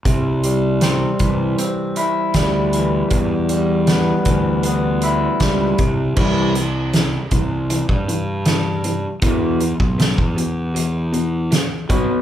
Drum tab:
CC |----------------|----------------|x---------------|----------------|
HH |x-x-x-x-x-x-x-x-|x-x-x-x-x-x-x-x-|--x-x-x-x-x-x-x-|x-x-x-x-x-x-x-x-|
SD |----o-------o---|----o-------o---|----o-------o---|----o-------o---|
BD |o-----o-----o---|o-----o-----o-o-|o-----o--o------|o--o-o--------o-|